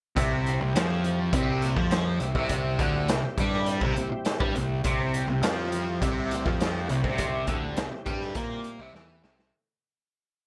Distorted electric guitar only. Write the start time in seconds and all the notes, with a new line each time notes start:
0.16 C3
0.62 C3
0.75 F3
1.34 C3
1.77 F3
2.20 C3
2.35 C3
2.80 D3
3.10 C3
3.25 muted distorted electric guitar stroke
3.40 G3
3.83 C3
3.98 C3
4.12 muted distorted electric guitar stroke
4.40 G3
4.56 C3
4.86 C3
5.30 C3
5.43 F3
6.02 C3
6.46 F3
6.89 C3
7.04 C3
7.49 D3
7.78 C3
7.92 muted distorted electric guitar stroke
8.06 G3
8.36 A#3
8.81 C3
8.95 E3
9.23 C3